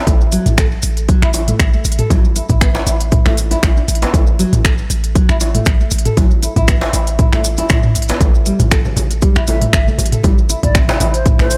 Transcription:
0.07 A1 A3, kick, closed hi-hat, djembe tone, maracas
0.21 maracas
0.32 F#3, open hi-hat, maracas
0.46 A1, closed hi-hat, mid tom, djembe tone, maracas
0.58 A4, finger snap, kick, closed hi-hat, maracas
0.72 maracas
0.82 A1, open hi-hat, maracas
0.97 closed hi-hat, maracas
1.09 F#3, kick, closed hi-hat, maracas
1.22 A1 E4, finger snap, maracas
1.33 open hi-hat, djembe tone, maracas
1.48 A3, closed hi-hat, mid tom, maracas
1.59 A1, finger snap, kick, closed hi-hat, maracas
1.73 A3, maracas
1.85 A1, open hi-hat, maracas
1.92 closed hi-hat
1.98 A4, closed hi-hat, mid tom, maracas
2.10 A1 F#3, kick, closed hi-hat, djembe tone, maracas
2.25 maracas
2.36 E4, open hi-hat, maracas
2.49 A1 E4, kick, closed hi-hat, mid tom, maracas
2.61 B3, finger snap, kick, closed hi-hat, maracas
2.75 djembe slap, maracas
2.87 A1 E4, open hi-hat, maracas
3.00 closed hi-hat, maracas
3.12 E4, kick, closed hi-hat, mid tom, maracas
3.25 A1 A3, finger snap, djembe tone, maracas
3.37 open hi-hat, maracas
3.51 E4, closed hi-hat, djembe tone, maracas
3.63 A1, finger snap, kick, closed hi-hat, djembe tone, maracas
3.77 D4, maracas
3.88 A1, open hi-hat, maracas
3.95 closed hi-hat
4.02 B3, closed hi-hat, djembe slap, maracas
4.14 A1 A3, kick, closed hi-hat, djembe tone, maracas
4.27 maracas
4.39 F#3, open hi-hat, maracas
4.53 A1, closed hi-hat, mid tom, djembe tone, maracas
4.65 A4, finger snap, kick, closed hi-hat, maracas
4.78 maracas
4.90 A1, open hi-hat, maracas
5.04 closed hi-hat, maracas
5.15 F#3, kick, closed hi-hat, maracas
5.29 A1 E4, finger snap, maracas
5.40 open hi-hat, djembe tone, maracas
5.55 A3, closed hi-hat, mid tom, maracas
5.65 A1, finger snap, kick, closed hi-hat, maracas
5.80 A3, maracas
5.91 A1, open hi-hat, maracas
5.99 closed hi-hat
6.05 A4, closed hi-hat, mid tom, maracas
6.17 A1 F#3, kick, closed hi-hat, djembe tone, maracas
6.31 maracas
6.43 E4, open hi-hat, maracas
6.56 A1 E4, kick, closed hi-hat, mid tom, djembe tone, maracas
6.68 B3, finger snap, kick, closed hi-hat, maracas
6.81 djembe slap, maracas
6.93 A1 E4, open hi-hat, maracas
7.07 closed hi-hat, maracas
7.19 E4, kick, closed hi-hat, mid tom, maracas
7.32 A1 A3, finger snap, djembe tone, maracas
7.44 open hi-hat, maracas
7.57 E4, closed hi-hat, djembe tone, maracas
7.69 A2, finger snap, kick, closed hi-hat, djembe tone, maracas
7.83 D4, mid tom, maracas
7.95 A1, open hi-hat, maracas
8.02 closed hi-hat
8.08 B3, closed hi-hat, djembe slap, maracas
8.20 A1 A3, kick, closed hi-hat, muted conga, djembe tone, maracas
8.35 maracas
8.46 G3, open hi-hat, muted conga, maracas
8.59 A1, closed hi-hat, mid tom, djembe tone, high conga, maracas
8.71 A4, finger snap, kick, closed hi-hat, muted conga, maracas
8.85 high conga, low conga, maracas
8.96 A1, open hi-hat, high conga, low conga, maracas
9.11 closed hi-hat, muted conga, maracas
9.22 G3, kick, closed hi-hat, maracas
9.35 A1 E4, finger snap, muted conga, maracas
9.47 A3 E5, open hi-hat, high conga, djembe tone, maracas
9.61 A3, closed hi-hat, mid tom, muted conga, maracas
9.73 G1 E5, finger snap, kick, closed hi-hat, maracas
9.87 A3, high conga, maracas
9.98 A1, open hi-hat, muted conga, low conga, maracas
10.06 closed hi-hat
10.12 A4, closed hi-hat, mid tom, high conga, maracas
10.23 A1 G3, kick, closed hi-hat, muted conga, djembe tone, maracas
10.38 maracas
10.49 E4, open hi-hat, muted conga, maracas
10.63 A1 E4 D5, kick, closed hi-hat, mid tom, high conga, maracas
10.75 C4, finger snap, kick, closed hi-hat, muted conga, maracas
10.88 djembe slap, high conga, low conga, maracas
11.00 A1 E4, open hi-hat, high conga, low conga, maracas
11.14 C5, closed hi-hat, muted conga, maracas
11.26 E4, kick, closed hi-hat, mid tom, maracas
11.38 A1 A3 C5, finger snap, muted conga, djembe tone, maracas
11.50 open hi-hat, high conga, maracas

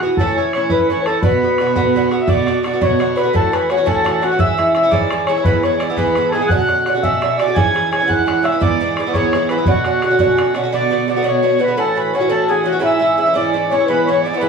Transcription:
0.00 B3 F#4, bodhran
0.05 E3
0.17 A2 E3 C#4 E4 A4, bodhran
0.36 C#4 E4 C#5
0.40 E3
0.53 A2 E3 C#4 E4 C#5, bodhran
0.69 A2 E3 C#4 E4 B4, bodhran
0.79 bodhran
0.89 A2 E3 C#4 E4 C#5, bodhran
1.02 A4 B4, bodhran
1.07 E3 C#4 E4 A4
1.22 B2 D3 B3 F#4 B4, bodhran
1.43 D3 B3 F#4
1.58 B2 D3 B3 F#4, bodhran
1.67 bodhran
1.76 B2 D3 B3 F#4, bodhran
1.85 bodhran
1.95 B2 D3 B3 F#4, bodhran
2.11 D3 B3 F#4, bodhran
2.22 E5
2.27 B2 D3 B3 F#4 D5, bodhran
2.46 B2 D3 B3 F#4, bodhran
2.63 B2 D3 B3 F#4 D5, bodhran
2.73 D3 B3 F#4
2.81 B2 D3 B3 F#4 C#5, bodhran
2.91 bodhran
2.99 B2 D3 B3 F#4, bodhran
3.16 B2 D3 B3 F#4 B4, bodhran
3.23 D3 B3 F#4
3.33 A2 E3 C#4 F#4 A4, bodhran
3.52 A2 E3 C#4 F#4 B4, bodhran
3.69 A2 E3 C#4 F#4 C#5, bodhran
3.77 E3 C#4 F#4
3.86 A2 E3 C#4 F#4 A4, bodhran
3.96 bodhran
4.04 A2 E3 C#4 F#4, bodhran
4.21 A2 E3 C#4 F#4, bodhran
4.32 E3 C#4 F#4
4.39 G#2 E3 C#4 E4 E5, bodhran
4.58 G#2 E3 C#4 E4, bodhran
4.74 G#2 E3 C#4 E4 E5, bodhran
4.83 E3 C#4 E4
4.91 G#2 E3 C#4 E4 D5, bodhran
5.02 bodhran
5.11 G#2 E3 C#4 E4, bodhran
5.27 G#2 E3 C#4 C#5, bodhran
5.31 E4
5.37 E3 C#4 E4
5.43 G#2 E3 B3 E4 B4, bodhran
5.63 G#2 E3 B3 E4 C#5, bodhran
5.78 G#2 E3 B3 D5, bodhran
5.83 E4
5.90 E3 B3 E4
5.96 G#2 E3 B3 E4 B4, bodhran
6.06 bodhran
6.15 G#2 E3 B3 E4, bodhran
6.29 G#4 A4, bodhran
6.33 G#2 E3 B3 E4 G#4
6.41 E3 B3 E4
6.48 B2 D3 C#4 F#5, bodhran
6.52 F#4
6.67 B2 D3 C#4 F#4, bodhran
6.85 B2 D3 C#4 F#5, bodhran
6.89 F#4
6.94 D3 C#4 F#4
7.03 B2 D3 C#4 F#4 E5, bodhran
7.13 bodhran
7.21 B2 D3 C#4 F#4, bodhran
7.38 B2 D3 C#4 D5, bodhran
7.42 F#4
7.48 D3 C#4 F#4
7.55 G#2 E3 C#4 E4 G#5, bodhran
7.74 G#2 E3 C#4 E4, bodhran
7.91 G#2 E3 C#4 E4 G#5, bodhran
8.00 E3 C#4 E4
8.07 G#2 E3 C#4 E4 F#5, bodhran
8.20 bodhran
8.26 G#2 E3 C#4 E4, bodhran
8.42 G#2 E3 C#4 E4 E5, bodhran
8.52 E3 C#4 E4
8.61 G#2 E3 B3 E4 D5, bodhran
8.80 G#2 E3 B3 E4
8.97 G#2 E3 B3 E4 D5, bodhran
9.06 E3 B3 E4
9.13 G#2 E3 B3 E4 C#5, bodhran
9.23 bodhran
9.33 G#2 E3 B3 E4, bodhran
9.49 G#2 E3 B3 E4 B4, bodhran
9.58 E3 B3 E4
9.65 B2 D3 C#4 F#4, bodhran
9.69 F#4
9.85 B2 D3 C#4 F#4, bodhran
10.02 B2 D3 C#4 F#4, bodhran
10.11 D3 C#4 F#4
10.19 B2 D3 C#4 F#4, bodhran
10.28 bodhran
10.37 B2 D3 C#4 F#4, bodhran
10.54 B2 D3 C#4 F#4, bodhran
10.63 D3 C#4 F#4
10.72 B2 D3 B3 F#4 D5
10.91 B2 D3 B3 F#4
11.08 B2 D3 B3 F#4 D5
11.16 D3 B3 F#4
11.23 B2 D3 B3 F#4 C#5
11.27 C#5
11.43 B2 D3 B3 F#4
11.59 B2 D3 B3 F#4 B4
11.63 B4
11.68 D3 B3 F#4
11.77 A2 E3 C#4 F#4 A4
11.96 A2 E3 C#4 F#4 B4
12.13 A2 E3 C#4 F#4 C#5
12.20 E3 C#4 F#4
12.29 A2 E3 C#4 F#4 A4
12.48 A2 E3 C#4 F#4 G#4
12.64 A2 E3 C#4 F#4
12.72 E3 C#4 F#4
12.79 G#2 E3 C#4 E4 E5
12.85 E5
12.99 G#2 E3 C#4 E4
13.17 G#2 E3 C#4 E4 E5
13.26 E3 C#4 E4
13.33 G#2 E3 C#4 E4 D5
13.53 G#2 E3 C#4 E4
13.69 G#2 E3 C#4 E4 C#5
13.73 C#5
13.80 E3 C#4 E4
13.85 G#2 E3 B4
13.90 B3 E4 B4
14.04 G#2 C#5
14.08 E3 B3 E4
14.21 G#2 E3 D5
14.26 B3 E4
14.33 E3 B3 E4
14.37 G#2 B4
14.41 E3 B3 E4

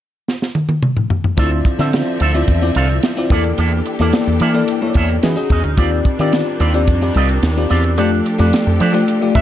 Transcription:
0.28 snare
0.42 snare
0.55 high tom
0.69 high tom
0.83 mid tom
0.97 mid tom
1.10 floor tom
1.24 floor tom
1.37 D2 D3 F3 C4 E4 F4 A4 D5 E5, kick, closed hi-hat
1.51 muted clean electric guitar stroke
1.65 muted clean electric guitar stroke, kick, closed hi-hat
1.78 D3 C4 E4 F4 A4 D5 E5, snare, closed hi-hat
1.93 muted clean electric guitar stroke, snare, closed hi-hat
2.07 muted clean electric guitar stroke
2.20 D2 C4 F4 A4 E5, closed hi-hat
2.34 C4 E4 F4 D5, muted clean electric guitar stroke, closed hi-hat
2.48 E2, kick, closed hi-hat
2.62 C4 E4 F4 D5, muted clean electric guitar stroke, closed hi-hat
2.75 C2 C4 F4 A4 F5, closed hi-hat
2.89 muted clean electric guitar stroke, closed hi-hat
3.03 snare, closed hi-hat
3.17 C4 E4 F4 D5, muted clean electric guitar stroke, closed hi-hat
3.30 E2 E3 A#3 D4 E4 G4 A4 D5, kick, open hi-hat
3.44 muted clean electric guitar stroke, closed hi-hat
3.58 E2 A#3 E4 A4 D5, closed hi-hat
3.73 muted clean electric guitar stroke
3.86 muted clean electric guitar stroke, closed hi-hat
3.99 E2 A#3 E4 A4 D5, snare, closed hi-hat
4.13 muted clean electric guitar stroke, snare, closed hi-hat
4.27 E2, muted clean electric guitar stroke
4.40 E3 A#3 E4 A4 D5, closed hi-hat
4.54 A#3 E4 A4 D5, muted clean electric guitar stroke, closed hi-hat
4.68 closed hi-hat
4.82 A#3 E4 A4 C#5, muted clean electric guitar stroke
4.89 D5
4.94 E2 A#3 E4 A4 E5, kick, closed hi-hat
5.09 muted clean electric guitar stroke, closed hi-hat
5.23 E3 G#3 C#4 D#4 F#4 G#4 D#5, snare, closed hi-hat
5.36 C#4 F#4 G#4 D#5, muted clean electric guitar stroke
5.50 E2 C#4 F#4 G#4 D#5, kick, open hi-hat
5.64 D2, muted clean electric guitar stroke, closed hi-hat
5.77 D#2 D#3 G3 C4 D4 F4 G4 D5, kick, closed hi-hat
5.92 muted clean electric guitar stroke
6.05 muted clean electric guitar stroke, kick, closed hi-hat
6.19 D#3 C4 F4 G4 D5, closed hi-hat
6.33 muted clean electric guitar stroke, snare, closed hi-hat
6.46 muted clean electric guitar stroke
6.60 D#2 C4 F4 G4 D5, closed hi-hat
6.74 C4 F4 G4 D5, muted clean electric guitar stroke, closed hi-hat
6.88 F2, kick, closed hi-hat
7.01 C4 F4 G4 D5, muted clean electric guitar stroke
7.14 C2 C4 F4 G4 D#5, closed hi-hat
7.29 muted clean electric guitar stroke, closed hi-hat
7.42 D#2, snare, closed hi-hat
7.56 C4 F4 G4 D5, muted clean electric guitar stroke, closed hi-hat
7.70 E2 C4 F4 G4 D5, open hi-hat
7.84 muted clean electric guitar stroke, closed hi-hat
7.97 F2 F3 A3 D4 F4 G4 A4 D5, closed hi-hat
8.12 muted clean electric guitar stroke
8.26 muted clean electric guitar stroke, closed hi-hat
8.38 F2 A3 D4 F4 G4 A4 D5, closed hi-hat
8.53 muted clean electric guitar stroke, snare, closed hi-hat
8.66 F2, muted clean electric guitar stroke
8.80 F3 D4 G4 A4 D5, closed hi-hat
8.93 A3 F4 G4 D5, muted clean electric guitar stroke, closed hi-hat
9.08 closed hi-hat
9.21 A3 F4 G4 D5, muted clean electric guitar stroke
9.35 F2 D4 G4 A4 E5, kick, closed hi-hat

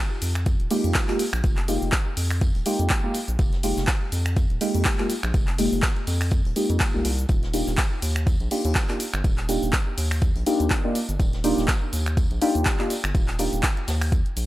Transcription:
0.22 F2, open hi-hat, tambourine, cabasa
0.35 finger snap, closed hi-hat, cabasa
0.46 kick, closed hi-hat, tambourine, cabasa
0.60 D#1, closed hi-hat
0.71 G#3 A#3 D#4 F4 G4, open hi-hat, cabasa
0.84 F2, closed hi-hat, cabasa
0.94 kick, snare, clap, closed hi-hat, tambourine, cabasa
1.08 G#3 A#3 D#4 F4 G4, clap, closed hi-hat
1.19 open hi-hat, tambourine, cabasa
1.33 A#1, finger snap, cabasa
1.44 F1, kick, closed hi-hat, tambourine, cabasa
1.57 clap, closed hi-hat
1.68 G#3 A#3 D#4 F4 G4, open hi-hat, tambourine, cabasa
1.82 F1, cabasa
1.92 kick, snare, clap, closed hi-hat, tambourine, cabasa
2.17 F2, open hi-hat, tambourine, cabasa
2.31 finger snap, closed hi-hat, open hi-hat, cabasa
2.41 kick, closed hi-hat, tambourine, cabasa
2.55 D#1, closed hi-hat
2.66 G#3 A#3 D#4 F4 G4, open hi-hat, tambourine, cabasa
2.79 F2, closed hi-hat, cabasa
2.90 kick, snare, clap, closed hi-hat, tambourine, cabasa
3.04 G#3 A#3 D#4 F4 G4
3.14 open hi-hat, tambourine, cabasa
3.28 A#1, closed hi-hat, cabasa
3.39 F1, kick, closed hi-hat, tambourine, cabasa
3.53 snare, closed hi-hat
3.63 G#3 A#3 D#4 F4 G4, open hi-hat, tambourine, cabasa
3.77 F1, snare, cabasa
3.87 kick, snare, clap, closed hi-hat, tambourine, cabasa
4.12 F2, open hi-hat, tambourine, cabasa
4.26 finger snap, closed hi-hat, cabasa
4.36 kick, closed hi-hat, tambourine, cabasa
4.50 D#1, closed hi-hat
4.61 G#3 A#3 D#4 F4 G4, open hi-hat, cabasa
4.74 F2, closed hi-hat, cabasa
4.85 kick, snare, clap, closed hi-hat, tambourine, cabasa
4.98 G#3 A#3 D#4 F4 G4, clap, closed hi-hat
5.09 open hi-hat, tambourine, cabasa
5.23 A#1, finger snap, closed hi-hat, cabasa
5.34 F1, kick, closed hi-hat, tambourine, cabasa
5.47 clap, closed hi-hat
5.58 G#3 A#3 D#4 F4 G4, open hi-hat, tambourine, cabasa
5.72 F1, cabasa
5.82 kick, snare, clap, closed hi-hat, tambourine, cabasa
5.97 closed hi-hat
6.07 F2, open hi-hat, tambourine, cabasa
6.21 finger snap, closed hi-hat, open hi-hat, cabasa
6.31 kick, closed hi-hat, tambourine, cabasa
6.45 D#1, closed hi-hat
6.56 G#3 A#3 D#4 F4 G4, open hi-hat, tambourine, cabasa
6.70 F2, closed hi-hat, cabasa
6.79 kick, snare, clap, closed hi-hat, tambourine, cabasa
6.94 C2 G#3 A#3 D#4 F4 G4
7.05 C2, open hi-hat, tambourine, cabasa
7.19 closed hi-hat, cabasa
7.29 D#1, kick, closed hi-hat, tambourine, cabasa
7.43 snare, closed hi-hat
7.53 A#3 D4 D#4 F4 G4, open hi-hat, tambourine, cabasa
7.67 D#1, snare, cabasa
7.77 kick, snare, clap, closed hi-hat, tambourine, cabasa
8.02 D#2, open hi-hat, tambourine, cabasa
8.16 finger snap, closed hi-hat, cabasa
8.27 kick, closed hi-hat, tambourine, cabasa
8.40 A#1, closed hi-hat
8.51 A#3 D4 D#4 F4 G4, open hi-hat, cabasa
8.65 D#2, closed hi-hat, cabasa
8.75 kick, snare, clap, closed hi-hat, tambourine, cabasa
8.89 A#3 D4 D#4 F4 G4, clap, closed hi-hat
9.00 open hi-hat, tambourine, cabasa
9.14 G1, finger snap, cabasa
9.24 D#1, kick, closed hi-hat, tambourine, cabasa
9.38 clap, closed hi-hat
9.49 A#3 D4 D#4 F4 G4, open hi-hat, tambourine, cabasa
9.63 D#1, cabasa
9.73 kick, snare, clap, closed hi-hat, tambourine, cabasa
9.98 D#2, open hi-hat, tambourine, cabasa
10.10 finger snap, closed hi-hat, open hi-hat, cabasa
10.22 kick, closed hi-hat, tambourine, cabasa
10.36 A#1, closed hi-hat
10.46 A#3 D4 D#4 F4 G4, open hi-hat, tambourine, cabasa
10.60 D#2, closed hi-hat, cabasa
10.70 kick, snare, clap, closed hi-hat, tambourine, cabasa
10.84 A#3 D4 D#4 F4 G4
10.95 open hi-hat, tambourine, cabasa
11.09 G1, closed hi-hat, cabasa
11.20 D#1, kick, closed hi-hat, tambourine, cabasa
11.33 snare, closed hi-hat
11.44 A#3 D4 D#4 F4 G4, open hi-hat, tambourine, cabasa
11.58 D#1, snare, cabasa
11.68 kick, snare, clap, closed hi-hat, tambourine, cabasa
11.93 D#2, open hi-hat, tambourine, cabasa
12.06 finger snap, closed hi-hat, cabasa
12.17 kick, closed hi-hat, tambourine, cabasa
12.31 A#1, closed hi-hat
12.41 A#3 D4 D#4 F4 G4, open hi-hat, cabasa
12.55 D#2, closed hi-hat, cabasa
12.65 kick, snare, clap, closed hi-hat, tambourine, cabasa
12.79 A#3 D4 D#4 F4 G4, clap, closed hi-hat
12.90 open hi-hat, tambourine, cabasa
13.04 G1, finger snap, closed hi-hat, cabasa
13.15 D#1, kick, closed hi-hat, tambourine, cabasa
13.28 clap, closed hi-hat
13.39 A#3 D4 D#4 F4 G4, open hi-hat, tambourine, cabasa
13.53 D#1, closed hi-hat, cabasa
13.63 kick, snare, clap, closed hi-hat, tambourine, cabasa
13.77 closed hi-hat
13.88 D#2, snare, open hi-hat, tambourine, cabasa
14.02 finger snap, open hi-hat, cabasa
14.12 kick, closed hi-hat, tambourine, cabasa
14.26 closed hi-hat
14.37 A#1, open hi-hat, cabasa

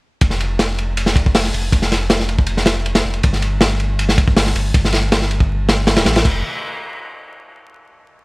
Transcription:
0.21 F1, kick, ride
0.30 snare
0.40 ride
0.59 snare, ride
0.78 ride
0.97 ride
1.06 snare
1.16 kick, ride
1.26 kick
1.35 snare, open hi-hat
1.44 snare
1.53 F1, ride
1.72 F1, kick, ride
1.82 snare
1.92 snare, ride
2.10 snare, ride
2.20 snare
2.29 ride
2.38 kick
2.47 ride
2.57 snare
2.66 snare, ride
2.86 ride
2.95 snare, ride
3.04 F1
3.14 ride
3.23 G1, kick, ride
3.33 snare
3.42 ride
3.61 snare, ride
3.80 ride
3.99 ride
4.09 snare
4.18 kick, ride
4.28 kick
4.37 snare, open hi-hat
4.46 snare
4.55 G1, ride
4.74 G1, kick, ride
4.85 snare
4.93 snare, ride
5.12 snare, ride
5.22 snare
5.31 ride
5.40 kick
5.69 snare, ride
5.87 snare, ride
5.96 D1, snare, ride
6.05 A1, snare, ride
6.16 snare, ride
6.25 F1, kick, crash

